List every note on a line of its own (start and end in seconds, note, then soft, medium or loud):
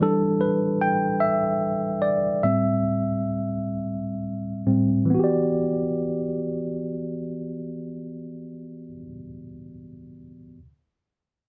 0.01 0.53 E3 soft
0.01 0.53 G3 soft
0.01 0.54 D4 soft
0.01 0.42 A4 medium
0.41 0.81 B4 medium
0.81 1.21 G5 medium
1.20 2.04 E5 medium
2.02 2.44 D5 medium
2.43 3.69 A2 soft
2.43 3.69 G3 soft
2.43 3.70 C4 soft
2.43 4.61 E5 medium
4.67 5.10 A2 soft
4.67 5.10 G3 soft
4.67 5.10 C4 soft
5.05 8.87 E3 medium
5.10 8.92 B3 medium
5.15 8.96 F#4 medium
5.19 9.01 G4 medium
5.24 9.05 D5 medium